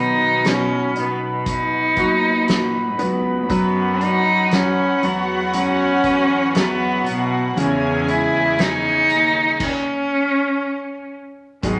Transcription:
Already playing: cello section B2, steel-string acoustic guitar B2 D#3 F#3 B3 D#4 B4, grand piano B3 F#4 B4, cello D#4, brass ensemble F#4 B4 D#5 B5
0.19 cello section B2
0.43 steel-string acoustic guitar F#3 B3 D#4 B4, grand piano F#4, snare, closed hi-hat
0.48 cello C#4
0.96 cello section B2, cello B3, grand piano D#4, closed hi-hat
1.46 cello D#4, kick, closed hi-hat
1.96 cello section A#2, steel-string acoustic guitar F#3 D#4 B4, grand piano F#4, kick, closed hi-hat
2.47 steel-string acoustic guitar F#3 D#4 B4, snare, closed hi-hat
2.98 cello section C#2, steel-string acoustic guitar F#3 B3 D#4 B4, grand piano B3, closed hi-hat
3.49 cello section F#2, steel-string acoustic guitar F#3 C#4 B4, grand piano F#3, cello B3, violin section F#4 F#5, brass ensemble C#5 F#5, kick, closed hi-hat
4.01 grand piano F#3, cello D#4, closed hi-hat
4.26 cello section F#2
4.50 steel-string acoustic guitar F#3 C#4 E4 B4, grand piano F#3, cello C#4, snare, closed hi-hat
5.03 cello section E2, grand piano F#3, cello B3, closed hi-hat
5.53 grand piano F#3, cello C#4, closed hi-hat
6.03 cello section E2, steel-string acoustic guitar E4 B4, kick, closed hi-hat
6.54 steel-string acoustic guitar F#3 C#4 E4 B4, grand piano F#3, cello B3, snare, closed hi-hat
7.05 cello section B2, steel-string acoustic guitar C#4 E4 B4, closed hi-hat
7.56 cello section E2, grand piano C#3, steel-string acoustic guitar E3 G#3 C#4 E4 G#4, brass ensemble C#4 G#4 G#5, cello C#4, violin section G#4 G#5, closed hi-hat
8.07 grand piano G#3, cello E4, closed hi-hat
8.34 cello section E2
8.57 steel-string acoustic guitar G#3 C#4 G#4, cello D#4, snare, closed hi-hat
9.10 cello section D#2, closed hi-hat
9.60 cello C#4, kick, crash
11.62 steel-string acoustic guitar G#2 D#3 F#3 B3 D#4 G#4, cello section G#2, cello B2, grand piano G#3, brass ensemble F#4 B4 D#5 G#5, kick, closed hi-hat

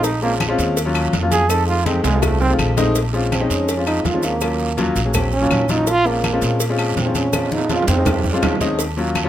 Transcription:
Already playing: upright bass A#1
0.04 trombone D#4, cowbell, high conga, low agogo, long guiro, maracas
0.21 grand piano G#3 C4 C#4 F4, trombone A#3, high conga, low agogo, maracas
0.40 cowbell, high conga, low timbale, low agogo, short guiro, claves, maracas
0.48 grand piano G#3 C4 C#4 F4
0.58 upright bass D#2, cowbell, high conga, short guiro, maracas
0.76 cowbell, high conga, low agogo, long guiro, maracas
0.85 grand piano F#3 A#3 C#4 F4
0.95 cowbell, low agogo, claves, maracas
1.13 upright bass F2, cowbell, high conga, low timbale, short guiro, maracas
1.21 grand piano F#3 A#3 C#4 F4
1.31 trombone G#4, cowbell, high conga, low agogo, short guiro, maracas
1.49 grand piano G#3 A3 C4 D#4, trombone A4, cowbell, high conga, low agogo, long guiro, claves, maracas
1.67 trombone F4, high conga, maracas
1.86 grand piano G#3 A3 C4 D#4, trombone C4, cowbell, high conga, low timbale, low agogo, short guiro, maracas
2.04 upright bass C2, trombone G#3, cowbell, high conga, high timbale, short guiro, maracas
2.13 grand piano G#3 A3 C4 F4
2.22 trombone A3, cowbell, high bongo, high conga, low conga, low timbale, low agogo, long guiro, claves, maracas
2.40 trombone C4, high conga, low timbale, maracas
2.50 grand piano G#3 A3 C4 F4
2.59 upright bass A#1, cowbell, high conga, low agogo, short guiro, claves, maracas
2.77 grand piano G#3 A3 C4 D#4, cowbell, low bongo, high conga, low timbale, short guiro, maracas
2.95 cowbell, high conga, low agogo, long guiro, maracas
3.13 grand piano G#3 C4 C#4 F4, high conga, low agogo, maracas
3.32 trombone C4, cowbell, high conga, low timbale, low agogo, short guiro, claves, maracas
3.40 grand piano G#3 C4 C#4 D#4
3.50 upright bass F2, trombone C#4, cowbell, short guiro, maracas
3.68 cowbell, high conga, low agogo, long guiro, maracas
3.77 grand piano G#3 C4 C#4 F4
3.87 trombone D#4, cowbell, high conga, low agogo, claves, maracas
4.04 upright bass D#2, trombone F4, cowbell, high conga, low timbale, short guiro, maracas
4.14 grand piano G#3 C4 C#4 F4
4.23 trombone A#3, cowbell, low agogo, short guiro, maracas
4.41 grand piano F#3 A#3 C#4 F4, cowbell, high conga, low agogo, long guiro, claves, maracas
4.59 high conga, maracas
4.77 grand piano F#3 A#3 C#4 F4, cowbell, high conga, low timbale, low agogo, short guiro, maracas
4.96 upright bass A#1, cowbell, high conga, short guiro, maracas
5.05 grand piano F#3 A#3 C#4 G#4
5.14 trombone C4, cowbell, high conga, low conga, low agogo, long guiro, claves, maracas
5.32 trombone C#4, high conga, maracas
5.41 grand piano F#3 A#3 C#4 F4
5.50 upright bass A#1, cowbell, high conga, low timbale, low agogo, short guiro, claves, maracas
5.68 grand piano F#3 A#3 C#4 F4, trombone D#4, cowbell, high conga, short guiro, maracas
5.87 trombone F4, cowbell, high conga, low agogo, long guiro, maracas
6.05 grand piano G#3 C4 C#4 F4, trombone A#3, high conga, low agogo, maracas
6.24 cowbell, high conga, low timbale, low agogo, short guiro, claves, maracas
6.33 grand piano G#3 C4 C#4 F4
6.42 upright bass A#2, cowbell, short guiro, maracas
6.60 cowbell, high conga, low agogo, long guiro, maracas
6.69 grand piano G#3 C4 C#4 F4
6.78 cowbell, high conga, low agogo, claves, maracas
6.96 upright bass A#2, trombone C4, cowbell, high conga, low timbale, short guiro, maracas
7.05 grand piano G#3 C4 C#4 F4
7.15 trombone C#4, cowbell, high conga, low agogo, short guiro, maracas
7.33 grand piano G#3 C4 C#4 F4, cowbell, high conga, high timbale, low agogo, long guiro, claves, maracas
7.45 high timbale
7.51 trombone D#4, high conga, maracas
7.58 high timbale
7.69 grand piano G#3 C4 C#4 F4, trombone F4, cowbell, high conga, high timbale, low agogo, short guiro, maracas
7.82 low timbale
7.87 upright bass F2, trombone C4, cowbell, low conga, short guiro, maracas
7.94 grand piano G#3 C4 C#4 D#4, high timbale
8.05 cowbell, low conga, low timbale, low agogo, long guiro, claves, maracas
8.19 low timbale
8.24 low conga, maracas
8.31 grand piano G#3 C4 C#4 F4, low timbale
8.42 upright bass D#2, cowbell, low conga, low timbale, low agogo, short guiro, claves, maracas
8.55 low timbale
8.60 grand piano G#3 C4 C#4 D#4, cowbell, low conga, short guiro, maracas
8.67 low timbale
8.79 cowbell, high conga, low agogo, long guiro, maracas
8.97 grand piano F#3 A#3 C#4 F4, high conga, low agogo, maracas
9.15 cowbell, high conga, low timbale, low agogo, short guiro, claves, maracas
9.24 grand piano F#3 A#3 C#4 F4

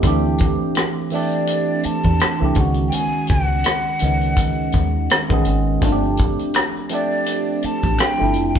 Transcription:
0.02 fingered electric bass D2, tine electric piano E3 A3 C4 D4, kick, closed hi-hat
0.07 tine electric piano G4
0.38 kick, closed hi-hat
0.75 cross-stick, closed hi-hat
1.10 tine electric piano E3 A3 C4, flute D5, open hi-hat
1.14 tine electric piano D4 G4
1.32 closed hi-hat
1.47 closed hi-hat
1.83 flute A5, muted fingered electric bass stroke, closed hi-hat
2.03 fingered electric bass E2, kick, closed hi-hat
2.20 cross-stick, closed hi-hat
2.39 fingered electric bass C2, tine electric piano E3 A3 C4
2.44 tine electric piano D4 G4
2.55 fingered electric bass C#2, tine electric piano D#3 G#3 B3, kick, closed hi-hat
2.59 tine electric piano C#4 F#4
2.74 closed hi-hat
2.88 flute G5, closed hi-hat
2.94 flute G#5
3.27 fingered electric bass C#2, flute F#5, kick, closed hi-hat
3.64 cross-stick, closed hi-hat
3.99 fingered electric bass C#2, tine electric piano D#3 G#3 B3, closed hi-hat
4.04 tine electric piano C#4 D#4
4.21 closed hi-hat
4.37 kick, closed hi-hat
4.72 fingered electric bass D#2, kick, closed hi-hat
5.10 cross-stick, closed hi-hat
5.29 fingered electric bass B1, tine electric piano D#3 G#3 B3 C#4, kick
5.34 tine electric piano G#4
5.45 fingered electric bass G#1, closed hi-hat
5.81 fingered electric bass G1, tine electric piano F3 A3 C4 D4, kick, closed hi-hat, shaker
5.86 tine electric piano F4
5.92 tine electric piano G4
6.03 shaker
6.17 kick, closed hi-hat
6.39 closed hi-hat, shaker
6.54 finger snap, cross-stick, closed hi-hat, shaker
6.76 shaker
6.89 tine electric piano F3 A3 C4 D4, closed hi-hat, shaker
6.93 tine electric piano G4, flute D5
7.10 shaker
7.25 closed hi-hat, shaker
7.46 shaker
7.62 flute A5, muted fingered electric bass stroke, closed hi-hat
7.82 fingered electric bass A1, kick, closed hi-hat, shaker
7.98 flute G5, finger snap, cross-stick, closed hi-hat, shaker
8.18 fingered electric bass G1, tine electric piano F3 A3 C4 D4, shaker
8.23 tine electric piano E4
8.34 fingered electric bass F1, closed hi-hat, shaker
8.49 flute G5
8.55 kick

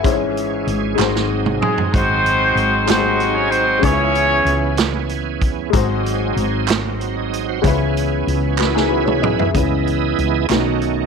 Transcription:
Already playing: grand piano B4 E5, tonewheel organ C#5
0.03 fretless electric bass G#1, grand piano G#2 G#3 C#4 E4 C5, tonewheel organ E3 G#3 C#4 G#4, kick, closed hi-hat
0.12 grand piano C#5
0.37 closed hi-hat
0.67 fretless electric bass G#1, closed hi-hat
0.95 fretless electric bass G#1, grand piano G#2 G#3 D#4 F#4, clap
1.00 tonewheel organ F#3 C4 D#4 G#4, grand piano C5, snare
1.15 snare
1.46 mid tom
1.62 horn section G#3 G#4, mid tom
1.78 floor tom
1.93 fretless electric bass G#1, horn section C4 D#4 F#4 C5, kick, closed hi-hat
2.26 closed hi-hat
2.55 fretless electric bass G#1, closed hi-hat
2.86 grand piano G#2 G#3 D#4 F#4 G4, horn section C4 C5, snare, clap, closed hi-hat
2.91 horn section D#4 F#4
2.96 grand piano G#4
3.20 closed hi-hat
3.34 horn section C#4 C#5
3.51 horn section C4 C5, closed hi-hat
3.79 grand piano C#3 G#3 C#4, horn section C#4 C#5, closed hi-hat
3.83 fretless electric bass C#2, tonewheel organ E3 B3 C#4 G#4, grand piano D#4 B4, horn section E4 G#4, kick
3.90 grand piano E4
4.15 closed hi-hat
4.45 fretless electric bass C#2, closed hi-hat
4.77 snare, clap, closed hi-hat
5.09 closed hi-hat
5.42 kick, closed hi-hat
5.70 fretless electric bass G#1, grand piano G#2 G#3 D#4 F#4, tonewheel organ F#3 C4 D#4 G#4, kick, closed hi-hat
5.76 grand piano C5
6.06 closed hi-hat
6.36 fretless electric bass G#1, closed hi-hat
6.68 snare, clap, closed hi-hat
7.00 tonewheel organ F#4 C5, closed hi-hat
7.17 tonewheel organ G#4 D#5
7.33 closed hi-hat
7.49 tonewheel organ F#4 C5
7.62 fretless electric bass C#2, grand piano C#3 G#3 C#4, tonewheel organ E3 B3 C#4 G4, kick, closed hi-hat
7.66 grand piano E4 B4, tonewheel organ G#4
7.97 closed hi-hat
8.27 fretless electric bass C#2, closed hi-hat
8.58 tonewheel organ E4 G#4 B4, grand piano F#4 B4, snare, clap
8.75 grand piano D#4 G#4, snare
8.89 grand piano F#4 B4
9.05 grand piano G#4 C#5, mid tom
9.22 grand piano G#4 D#5, mid tom
9.39 grand piano B4 E5, floor tom
9.54 fretless electric bass C#2, grand piano C#3 G#3 C#4 E4 B4, tonewheel organ E3 B3 E4 G#4 D#5, kick, closed hi-hat
9.87 closed hi-hat
10.18 fretless electric bass C#2, closed hi-hat
10.49 fretless electric bass B1, grand piano B2 A3 D#4 F#4 B4, tonewheel organ D#3 A3 C#4 D#4 F#4, snare, clap, closed hi-hat
10.82 closed hi-hat

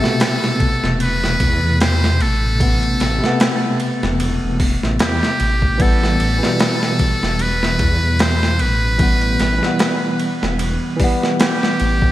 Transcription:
Already playing: tine electric piano A3 B3, muted trumpet A4
0.00 tine electric piano C3 A3, snare
0.06 tine electric piano B2
0.20 snare, ride
0.44 snare
0.60 kick, ride
0.83 detuned saw bass E1, snare
1.00 muted trumpet B4, ride
1.24 snare
1.40 detuned saw bass E2, kick, ride
1.63 detuned saw bass E2
1.80 muted trumpet C5, snare, ride
2.04 snare
2.20 detuned saw bass A1, muted trumpet A4, ride
2.59 tine electric piano C3 A3 B3, kick, ride
2.83 ride
3.00 detuned saw bass A1, snare, ride
3.19 tine electric piano C3 A3
3.24 tine electric piano B3, snare
3.40 snare, ride
3.80 ride
4.03 detuned saw bass E1, snare
4.20 ride
4.43 detuned saw bass E1
4.60 kick, open hi-hat
4.83 detuned saw bass A1, snare
4.99 detuned saw bass E2, muted trumpet G4, snare, ride
5.23 snare
5.40 detuned saw bass A1, ride
5.62 kick
5.78 tine electric piano E3 G3 B3, muted trumpet A4, kick, ride
6.03 snare
6.20 detuned saw bass A1, ride
6.38 tine electric piano E3
6.42 tine electric piano B2 G3, snare
6.60 snare, ride
6.83 snare
6.99 kick, ride
7.23 detuned saw bass E1, snare
7.39 muted trumpet B4, ride
7.63 snare
7.79 detuned saw bass E2, kick, ride
8.03 detuned saw bass E2
8.19 muted trumpet C5, snare, ride
8.43 snare
8.59 detuned saw bass A1, muted trumpet B4, ride
8.98 tine electric piano E3 G3 B3, kick, ride
9.21 ride
9.39 detuned saw bass A1, snare, ride
9.59 tine electric piano E3 G3
9.63 tine electric piano B3, snare
9.79 snare, ride
10.19 ride
10.43 detuned saw bass E1, snare
10.59 ride
10.96 tine electric piano E3 G3, kick, open hi-hat
11.04 tine electric piano B3
11.23 snare
11.40 muted trumpet G4, snare, ride
11.63 snare
11.80 detuned saw bass A1, ride
12.02 kick

